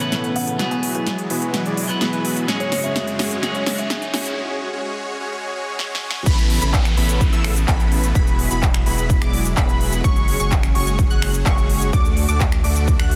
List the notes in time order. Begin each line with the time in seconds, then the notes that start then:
Already playing: C#3 A3 B3, riser
0.00 A2 E3 B3 C#4 B4, closed hi-hat
0.12 B3 C#4 E4 A4 B4, snare, closed hi-hat
0.24 closed hi-hat
0.36 F#5, open hi-hat
0.47 closed hi-hat
0.58 E3 F#3 G#3 B3 E4 F#4 G#4 B4, snare, closed hi-hat
0.71 G#5, closed hi-hat
0.83 open hi-hat
0.95 B3 E4 F#4 G#4 B4 G#5, closed hi-hat
1.07 snare, closed hi-hat
1.18 closed hi-hat
1.30 B3 E4 F#4 G#4 B4, open hi-hat
1.42 closed hi-hat
1.54 snare, closed hi-hat
1.66 B3 E4 F#4 G#4 D5, closed hi-hat
1.77 open hi-hat
1.88 F#3 B3 E4 B4, closed hi-hat
2.01 B3 E4 F#4 G#4 B4, snare, closed hi-hat
2.13 closed hi-hat
2.25 open hi-hat
2.37 closed hi-hat
2.47 F#2 C#3 F#3 G#3 C#4 F#4 G#4 C#5, snare, closed hi-hat
2.60 C#5, closed hi-hat
2.72 C#5, snare, open hi-hat
2.84 G#3 C#4 F#4 G#4 C#5 E5, closed hi-hat
2.96 snare, closed hi-hat
3.07 closed hi-hat
3.19 G#3 C#4 F#4 G#4 C#5, snare, open hi-hat
3.31 closed hi-hat
3.42 F#3 G#3 C#4 F#4 G#4 C#5, snare, closed hi-hat
3.55 C#5, closed hi-hat
3.66 snare, open hi-hat
3.78 G#3 C#4 F#4 G#4 C#5 E5, closed hi-hat
3.90 snare, closed hi-hat
4.02 closed hi-hat
4.14 G#3 C#4 F#4 G#4 C#5, snare, open hi-hat
4.25 closed hi-hat
4.37 G#3 C#4 F#4 G#4 C#5
4.73 G#3 C#4 F#4 G#4 C#5
4.84 G#3 C#4 F#4 G#4 C#5
5.20 G#3 C#4 F#4 G#4 C#5
5.32 G#3 C#4 F#4 G#4 C#5
5.55 G#3 C#4 F#4 G#4 C#5
5.79 G#3 C#4 F#4 G#4 C#5, snare
5.95 snare
6.03 G#3 C#4 F#4 G#4 C#5
6.11 snare
6.26 A1 C#3 A3 B3 C#4 E4 A4 B4 B5, kick, closed hi-hat, crash, downlifter, cabasa
6.38 closed hi-hat, cabasa
6.50 open hi-hat
6.62 A1 B3 C#4 E4 A4 B4 B5, closed hi-hat, cabasa
6.74 kick, clap, closed hi-hat, cabasa
6.85 finger snap, closed hi-hat, cabasa
6.97 A1 B3 C#4 E4 A4 B4 B5, open hi-hat
7.09 closed hi-hat, cabasa
7.21 kick, closed hi-hat, cabasa
7.33 A1 B3 C#4 E4 A4 E5 E6, closed hi-hat, cabasa
7.44 finger snap, open hi-hat
7.56 closed hi-hat, cabasa
7.68 A1 B3 C#4 E4 A4 B4 B5, kick, clap, closed hi-hat, cabasa
7.80 closed hi-hat, cabasa
7.92 open hi-hat
8.03 closed hi-hat, cabasa
8.15 E1 F#3 G#3 B3 E4 F#4 G#4 B4 B5, kick, closed hi-hat, cabasa
8.27 closed hi-hat, cabasa
8.39 open hi-hat
8.51 E1 B3 E4 F#4 G#4 B4 B5, closed hi-hat, cabasa
8.63 kick, clap, closed hi-hat, cabasa
8.74 finger snap, closed hi-hat, cabasa
8.86 E1 B3 E4 F#4 G#4 B4 B5, open hi-hat
8.98 closed hi-hat, cabasa
9.10 kick, closed hi-hat, cabasa
9.22 E1 B3 E4 F#4 G#4 D5 D6, finger snap, closed hi-hat, cabasa
9.33 open hi-hat
9.45 closed hi-hat, cabasa
9.57 E1 B3 E4 F#4 G#4 B4 B5, kick, clap, closed hi-hat, cabasa
9.69 closed hi-hat, cabasa
9.81 open hi-hat
9.92 closed hi-hat, cabasa
10.04 F#1 G#3 C#4 F#4 G#4 C#5 C#6, kick, closed hi-hat, cabasa
10.16 closed hi-hat, cabasa
10.28 open hi-hat
10.40 F#1 G#3 C#4 F#4 G#4 C#5 C#6, closed hi-hat, cabasa
10.52 kick, clap, closed hi-hat, cabasa
10.63 finger snap, closed hi-hat, cabasa
10.75 F#1 G#3 C#4 F#4 G#4 C#5 C#6, open hi-hat
10.87 closed hi-hat, cabasa
10.99 kick, closed hi-hat, cabasa
11.10 F#1 G#3 C#4 F#4 G#4 F#5 F#6, closed hi-hat, cabasa
11.22 finger snap, open hi-hat
11.34 closed hi-hat, cabasa
11.46 F#1 G#3 C#4 F#4 G#4 C#5 C#6, kick, clap, closed hi-hat, cabasa
11.58 closed hi-hat, cabasa
11.70 open hi-hat
11.81 closed hi-hat, cabasa
11.93 D2 D3 A3 D4 F#4 A4 D5 D6, kick, closed hi-hat, cabasa
12.05 closed hi-hat, cabasa
12.17 open hi-hat
12.29 D2 A3 D4 F#4 A4 D5 D6, closed hi-hat, cabasa
12.40 kick, clap, closed hi-hat, cabasa
12.52 finger snap, closed hi-hat, cabasa
12.64 D2 A3 D4 F#4 A4 D5 D6, open hi-hat
12.76 closed hi-hat, cabasa
12.88 kick, closed hi-hat, cabasa
12.99 D2 A3 D4 F#4 A4 F#5 F#6, finger snap, closed hi-hat, cabasa
13.11 open hi-hat